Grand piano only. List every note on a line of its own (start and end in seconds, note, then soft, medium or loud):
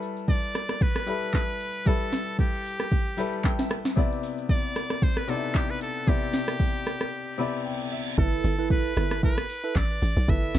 0.00 0.60 G3 medium
0.00 0.61 E4 medium
0.00 0.61 A4 medium
0.00 0.61 B4 medium
1.06 1.71 G3 medium
1.06 1.72 E4 medium
1.06 1.72 A4 medium
1.06 1.72 B4 medium
1.85 2.71 G3 medium
1.85 2.71 E4 medium
1.85 2.72 A4 medium
1.85 2.72 B4 medium
3.17 3.82 G3 medium
3.17 3.82 E4 medium
3.17 3.83 A4 medium
3.17 3.83 B4 loud
3.17 3.43 B5 medium
3.45 3.58 G5 medium
3.59 3.94 E5 medium
3.96 4.81 C3 medium
3.96 4.82 B3 medium
3.96 4.82 E4 medium
3.96 4.82 D5 medium
5.27 5.92 C3 medium
5.27 5.93 B3 medium
5.27 5.36 D#4 medium
5.27 5.94 D5 medium
5.36 5.96 E4 medium
6.06 6.92 C3 medium
6.06 6.92 B3 medium
6.06 6.93 E4 medium
6.06 6.93 D5 medium
7.38 8.03 C3 medium
7.38 8.03 B3 medium
7.38 8.04 E4 medium
7.38 8.04 D5 loud
7.38 7.64 B5 medium
7.66 7.90 G5 medium
7.92 8.16 E5 medium